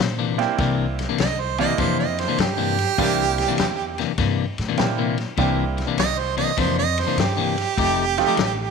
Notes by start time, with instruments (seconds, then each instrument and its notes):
0.00 upright bass A#2, snare
0.19 clean electric guitar C3 E3 A#3 D4
0.38 upright piano A#3 C4 D4 E4 G4, muted clean electric guitar stroke, snare, ride
0.58 upright bass C2, clean electric guitar C3 E3 A#3 D4, kick, snare, ride
0.99 muted clean electric guitar stroke, snare, ride
1.09 clean electric guitar C3 E3 A#3 D4
1.18 upright bass C2, harmonica D#5, snare, ride
1.40 harmonica C5
1.58 clean electric guitar C3 E3 A#3 D4, upright piano A#3 C4 D4 E4 G4, harmonica D#5, snare, ride
1.78 upright bass F2, clean electric guitar C3 E3 A#3 D4, harmonica C5, kick, snare, ride
2.00 harmonica D#5
2.18 harmonica C5, snare, ride
2.28 clean electric guitar C3 E3 A#3 D4
2.38 upright bass G2, harmonica G4, snare, ride
2.57 clean electric guitar C3 E3 A#3 D4
2.78 muted clean electric guitar stroke, snare, ride
2.98 upright bass C2, clean electric guitar C3 E3 A#3 D4, upright piano A#3 C4 D4 E4 G4, kick, snare, ride
3.38 muted clean electric guitar stroke, snare, ride
3.48 clean electric guitar C3 E3 A#3 D4
3.58 upright bass E2, snare, ride
3.98 clean electric guitar C3 E3 A#3 D4, snare, ride
4.18 upright bass G2, clean electric guitar C3 E3 A#3 D4, kick, snare, ride
4.58 upright bass A2, snare, ride
4.68 clean electric guitar C3 E3 A#3 D4
4.77 upright bass A#2, upright piano A#3 C4 D4 E4 G4, snare, ride
4.98 clean electric guitar C3 E3 A#3 D4
5.18 muted clean electric guitar stroke, snare, ride
5.37 upright bass C2, clean electric guitar C3 E3 A#3 D4, upright piano A#3 C4 D4 E4 G4, kick, snare, ride
5.77 muted clean electric guitar stroke, snare, ride
5.87 clean electric guitar C3 E3 A#3 D4
5.97 upright bass C2, harmonica D#5, snare, ride
6.19 harmonica C5
6.37 clean electric guitar C3 E3 A#3 D4, harmonica D#5, snare, ride
6.57 upright bass F2, clean electric guitar C3 E3 A#3 D4, harmonica C5, kick, snare, ride
6.79 harmonica D#5
6.98 harmonica C5, snare, ride
7.07 clean electric guitar C3 E3 A#3 D4
7.17 upright bass G2, harmonica G4, snare, ride
7.37 clean electric guitar C3 E3 A#3 D4
7.57 muted clean electric guitar stroke, snare, ride
7.77 upright bass F1, clean electric guitar F3 A3 D#4 G4, kick, snare, ride
8.18 upright piano A3 C4 D#4 F4 G4, muted clean electric guitar stroke, snare, ride
8.27 clean electric guitar F3 A3 D#4 G4
8.37 upright bass A1, snare, ride